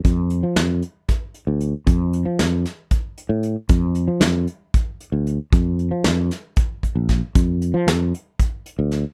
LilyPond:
<<
  \new Staff \with { instrumentName = "Fretless electric bass" } { \clef bass \time 7/8 \key d \minor \tempo 4 = 115 f,8. f16 f,8 r4 r16 d,8 r16 | f,8. f16 f,8 r4 r16 a,8 r16 | f,8. f16 f,8 r4 r16 d,8 r16 | f,8. f16 f,8 r4 r16 bes,,8 r16 |
f,8. f16 f,8 r4 r16 d,8 r16 | }
  \new DrumStaff \with { instrumentName = "Drums" } \drummode { \time 7/8 <hh bd>8 hh8 <hh sn>8 hh8 <hh bd sn>8 hh8 hh8 | <hh bd>8 hh8 <hh sn>8 <hh sn>8 <hh bd>8 hh8 hh8 | <hh bd>8 hh8 <hh sn>8 hh8 <hh bd>8 hh8 hh8 | <hh bd>8 hh8 <hh sn>8 <hh sn>8 <hh bd>8 <hh bd>8 <hh bd sn>8 |
<hh bd>8 hh8 <hh sn>8 hh8 <hh bd>8 hh8 <hh sn>8 | }
>>